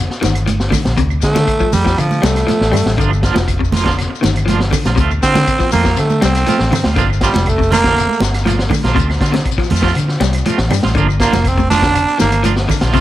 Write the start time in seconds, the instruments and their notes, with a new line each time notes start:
0.00 shekere
0.10 snare, shekere
0.21 fingered electric bass G1, clean electric guitar D#3, snare, closed hi-hat, high conga, shekere
0.35 closed hi-hat, claves, shekere
0.47 muted clean electric guitar stroke, closed hi-hat, high conga, shekere
0.60 snare, shekere
0.71 clean electric guitar D3, kick, snare, open hi-hat, high conga, low conga, claves, shekere
0.85 fingered electric bass A#1, snare, closed hi-hat, high conga, shekere
0.98 fingered electric bass D2, clean electric guitar C3, kick, closed hi-hat, shekere
1.10 claves, shekere
1.22 fingered electric bass D3, baritone saxophone A3, kick, snare, closed hi-hat, shekere
1.35 clean electric guitar D3, snare, closed hi-hat, high conga, low conga, shekere
1.47 kick, closed hi-hat, claves, shekere
1.60 clean electric guitar F3, muted fingered electric bass stroke, kick, shekere
1.72 fingered electric bass F2, baritone saxophone G3, open hi-hat, high conga, low conga, shekere
1.84 clean electric guitar F3, kick, snare, shekere
1.98 fingered electric bass D3, baritone saxophone F3, closed hi-hat, claves, shekere
2.11 high conga, shekere
2.22 fingered electric bass C2, clean electric guitar G3, baritone saxophone A3, snare, closed hi-hat, high conga, shekere
2.36 snare, closed hi-hat, claves, shekere
2.47 clean electric guitar F3, snare, closed hi-hat, high conga
2.51 shekere
2.61 fingered electric bass A1, snare, shekere
2.72 fingered electric bass G2, clean electric guitar G3, open hi-hat, low conga, claves
2.77 shekere
2.86 fingered electric bass A1, snare, shekere
2.98 fingered electric bass G1, clean electric guitar D3 F3 A#3 D4 F4, kick, closed hi-hat, shekere
3.11 muted clean electric guitar stroke, claves, shekere
3.23 clean electric guitar F3 A#3 D4 F4, kick, snare, closed hi-hat, shekere
3.34 fingered electric bass F1, clean electric guitar F3, muted clean electric guitar stroke, snare, closed hi-hat, high conga, shekere
3.48 kick, closed hi-hat, claves, shekere
3.59 clean electric guitar C3, muted clean electric guitar stroke, kick
3.64 shekere
3.72 clean electric guitar F3 A#3 F4, snare, open hi-hat, high conga, low conga
3.77 shekere
3.84 clean electric guitar D3 F3 A#3 D4 F4, kick, snare, closed hi-hat
3.91 shekere
3.98 muted clean electric guitar stroke, snare, closed hi-hat, claves, shekere
4.10 muted clean electric guitar stroke
4.15 shekere
4.21 fingered electric bass G1, clean electric guitar D#3, muted clean electric guitar stroke, snare, closed hi-hat, high conga
4.26 shekere
4.36 closed hi-hat, claves, shekere
4.46 clean electric guitar F3 A#3 D4 F4, snare, closed hi-hat, high conga
4.50 shekere
4.60 muted clean electric guitar stroke, snare, shekere
4.71 clean electric guitar D3, muted clean electric guitar stroke, kick, open hi-hat, low conga, claves, shekere
4.85 fingered electric bass A#1, clean electric guitar A#3 D4 F4, snare, closed hi-hat, high conga, shekere
4.96 fingered electric bass D2, clean electric guitar C3 A3, kick, closed hi-hat, shekere
5.00 clean electric guitar C4 F4
5.11 muted clean electric guitar stroke, claves, shekere
5.23 fingered electric bass D3, baritone saxophone C4, clean electric guitar C4 F4, kick, snare, closed hi-hat, shekere
5.34 clean electric guitar D3, snare, closed hi-hat, high conga, low conga, shekere
5.47 kick, closed hi-hat, claves, shekere
5.59 clean electric guitar F3, muted fingered electric bass stroke, muted clean electric guitar stroke, kick, snare, shekere
5.72 fingered electric bass F2, clean electric guitar A3 C4 F4, baritone saxophone A#3, open hi-hat, high conga, low conga, shekere
5.84 clean electric guitar F3 A3 C4 F4, kick, snare, shekere
5.97 fingered electric bass D3, baritone saxophone A3, muted clean electric guitar stroke, snare, closed hi-hat, claves, shekere
6.10 muted clean electric guitar stroke, high conga, shekere
6.21 fingered electric bass C2, clean electric guitar G3, baritone saxophone C4, muted clean electric guitar stroke, snare, closed hi-hat, high conga, shekere
6.35 snare, closed hi-hat, claves, shekere
6.46 clean electric guitar F3 A3 C4 F4, closed hi-hat, high conga, shekere
6.59 fingered electric bass A1, muted clean electric guitar stroke, snare, shekere
6.71 fingered electric bass G2, clean electric guitar D3, muted clean electric guitar stroke, open hi-hat, low conga, claves, shekere
6.84 fingered electric bass D2, clean electric guitar C4 F4, snare, high conga, shekere
6.96 fingered electric bass G1, clean electric guitar D3 F3 A#3 D4 F4, kick, snare, closed hi-hat, shekere
7.10 muted clean electric guitar stroke, claves, shekere
7.21 clean electric guitar F3 A#3 D4 F4, baritone saxophone G3, kick, snare, closed hi-hat, shekere
7.34 fingered electric bass F1, clean electric guitar F3, snare, closed hi-hat, high conga
7.38 shekere
7.46 baritone saxophone A3, kick, closed hi-hat, claves, shekere
7.58 clean electric guitar C3, muted clean electric guitar stroke, kick
7.63 shekere
7.71 clean electric guitar F3 A#3 D4 F4, baritone saxophone A#3, open hi-hat, high conga, low conga, shekere
7.84 clean electric guitar D3 F3 A#3 D4 F4, kick, snare, closed hi-hat, shekere
7.96 muted clean electric guitar stroke, snare, closed hi-hat, claves, shekere
8.09 muted clean electric guitar stroke, high conga, shekere
8.20 fingered electric bass G1, baritone saxophone G3, muted clean electric guitar stroke, snare, closed hi-hat, high conga, shekere
8.34 snare, closed hi-hat, claves
8.38 shekere
8.46 clean electric guitar F3 A#3 D4 F4, snare, closed hi-hat, high conga
8.50 shekere
8.59 muted clean electric guitar stroke, snare, shekere
8.70 clean electric guitar D3, muted clean electric guitar stroke, kick, open hi-hat, high conga, low conga, claves
8.74 shekere
8.83 fingered electric bass A#1, clean electric guitar A#3 D4 F4, snare, closed hi-hat, high conga
8.88 shekere
8.95 fingered electric bass D2, clean electric guitar C3 A3 C4 F4, kick, closed hi-hat
9.00 shekere
9.09 muted clean electric guitar stroke, snare, claves
9.13 shekere
9.21 fingered electric bass D3, clean electric guitar A3 C4 F4, kick, snare, closed hi-hat
9.25 shekere
9.32 clean electric guitar C3, muted clean electric guitar stroke, snare, closed hi-hat, high conga
9.40 shekere
9.45 kick, closed hi-hat, claves
9.52 shekere
9.58 clean electric guitar F3, muted fingered electric bass stroke, muted clean electric guitar stroke, kick, snare
9.64 shekere
9.70 fingered electric bass F2, clean electric guitar A3 C4 F4, open hi-hat, high conga, low conga
9.76 shekere
9.82 clean electric guitar F3 A3 C4 F4, kick, snare
9.88 shekere
9.95 fingered electric bass D3, muted clean electric guitar stroke, closed hi-hat, claves, shekere
10.08 muted clean electric guitar stroke, snare, shekere
10.20 fingered electric bass C2, clean electric guitar G3, muted clean electric guitar stroke, snare, closed hi-hat, high conga, shekere
10.33 closed hi-hat, claves
10.38 shekere
10.45 clean electric guitar F3 A3 C4 F4, closed hi-hat, high conga
10.49 shekere
10.58 fingered electric bass A1, muted clean electric guitar stroke, snare, shekere
10.70 fingered electric bass G2, clean electric guitar G3, muted clean electric guitar stroke, open hi-hat, low conga, claves, shekere
10.83 fingered electric bass A1, clean electric guitar C4 F4, snare, high conga
10.87 shekere
10.95 fingered electric bass G1, clean electric guitar D3 F3 A#3 D4 F4, kick, closed hi-hat, shekere
11.08 muted clean electric guitar stroke, claves, shekere
11.20 clean electric guitar F3 A#3 D4 F4, baritone saxophone A#3, kick, snare, closed hi-hat, shekere
11.32 fingered electric bass F1, clean electric guitar F3, muted clean electric guitar stroke, snare, closed hi-hat, high conga, low conga, shekere
11.45 baritone saxophone C4, kick, closed hi-hat, claves, shekere
11.57 clean electric guitar C3, muted clean electric guitar stroke, kick, high conga, shekere
11.70 clean electric guitar F3 A#3 D4 F4, baritone saxophone D4, snare, open hi-hat, high conga, low conga, shekere
11.82 clean electric guitar D3 F3 A#3 D4, kick, snare, closed hi-hat, shekere
11.95 muted clean electric guitar stroke, closed hi-hat, claves, shekere
12.08 muted clean electric guitar stroke, shekere
12.18 fingered electric bass G1, clean electric guitar D#3, baritone saxophone A#3, muted clean electric guitar stroke, snare, closed hi-hat, high conga, shekere
12.32 closed hi-hat, claves, shekere
12.43 clean electric guitar F3 A#3 D4 F4, closed hi-hat, high conga, shekere
12.56 muted clean electric guitar stroke, snare, shekere
12.69 clean electric guitar D3, muted clean electric guitar stroke, kick, open hi-hat, low conga, claves, shekere
12.81 fingered electric bass A#1, clean electric guitar A#3 D4 F4, snare, closed hi-hat, shekere
12.93 fingered electric bass D2, clean electric guitar C3 F3 A3 C4 F4, kick, closed hi-hat, shekere